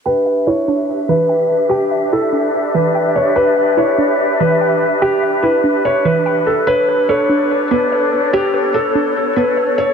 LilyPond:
<<
  \new Staff \with { instrumentName = "Felt piano" } { \time 4/4 \key e \dorian \tempo 4 = 145 b'4 cis''4. b'4. | g'4 a'4. b'4 cis''8 | b'4 cis''4. b'4. | g'4 b'4 cis''8 b'4 a'8 |
b'4 cis''4. b'4. | g'4 a'4. b'4 cis''8 | }
  \new Staff \with { instrumentName = "Synth pluck" } { \time 4/4 \key e \dorian g''8 e''8 e'8 d'4 e8 g''4 | g''8 e''8 e'8 d'4 e8 g''4 | g''8 e''8 e'8 d'4 e8 g''4 | g''8 e''8 e'8 d'4 e8 g''4 |
cis''8 b'8 a'8 d'4 b8 cis''4 | cis''8 b'8 a'8 d'4 b8 cis''4 | }
  \new Staff \with { instrumentName = "Flute section" } { \time 4/4 \key e \dorian << { b'1~ | b'1~ | b'1~ | b'1~ |
b'1~ | b'1 | } \\ { <d' g' e''>1~ | <d' g' e''>1~ | <d' g' e''>1~ | <d' g' e''>1 |
<d' a' cis''>1~ | <d' a' cis''>1 | } >> }
  \new Staff \with { instrumentName = "Synth texture" } { \time 4/4 \key e \dorian <d' g' e''>1~ | <d' g' e''>1~ | <d' g' e''>1~ | <d' g' e''>1 |
<b d' a' cis''>1~ | <b d' a' cis''>1 | }
>>